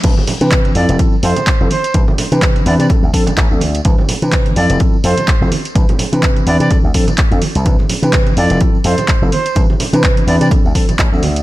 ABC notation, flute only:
X:1
M:4/4
L:1/16
Q:"Swing 16ths" 1/4=126
K:C
V:1 name="Flute"
z6 d2 z2 c4 c2 | z6 d d z8 | z6 d2 z2 c4 z2 | z6 d d z8 |
z6 d2 z2 c4 c2 | z6 d d z8 |]